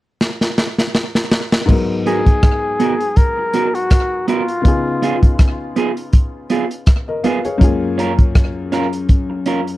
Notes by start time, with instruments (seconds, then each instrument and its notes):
0.21 snare
0.41 snare
0.58 snare
0.78 snare
0.95 snare
1.15 snare
1.31 snare
1.52 snare
1.66 grand piano G#2 B3 D#4, kick, crash
1.71 grand piano F#3 A#4
2.06 clean electric guitar B3 F#4 A#4, flugelhorn G#4, closed hi-hat
2.26 kick, closed hi-hat
2.43 kick, cross-stick, closed hi-hat
2.80 clean electric guitar B3 F#4 A#4, closed hi-hat
3.00 closed hi-hat
3.16 flugelhorn A#4, kick, closed hi-hat
3.38 muted clean electric guitar stroke
3.53 clean electric guitar B3 F#4 A#4, closed hi-hat
3.75 flugelhorn F#4, closed hi-hat
3.90 kick, cross-stick, closed hi-hat
4.28 clean electric guitar B3 F#4 A#4, flugelhorn F4, closed hi-hat
4.48 closed hi-hat
4.62 grand piano C#3 B3 D#4, kick, closed hi-hat
4.66 grand piano F4 G#4
5.02 clean electric guitar B3 F4 G#4, closed hi-hat
5.23 kick, closed hi-hat
5.39 kick, cross-stick, closed hi-hat
5.76 clean electric guitar B3 F4 G#4, closed hi-hat
5.97 closed hi-hat
6.13 kick, closed hi-hat
6.50 clean electric guitar B3 F4 G#4, closed hi-hat
6.71 closed hi-hat
6.86 kick, cross-stick, closed hi-hat
7.08 grand piano A#4 D#5
7.24 clean electric guitar B3 F4 G#4, grand piano B4 F5, closed hi-hat
7.45 grand piano G#4 C#5, muted clean electric guitar stroke, closed hi-hat
7.58 grand piano F#2 G#3 C#4, kick, closed hi-hat
7.63 grand piano A#3 F4 G#4
7.98 clean electric guitar C#4 F4 A#4, closed hi-hat
8.18 kick, closed hi-hat
8.35 kick, cross-stick, closed hi-hat
8.72 clean electric guitar C#4 F4 A#4, cross-stick, closed hi-hat
8.93 closed hi-hat
9.09 kick, closed hi-hat
9.30 muted clean electric guitar stroke
9.46 clean electric guitar C#4 F4 A#4, closed hi-hat
9.67 closed hi-hat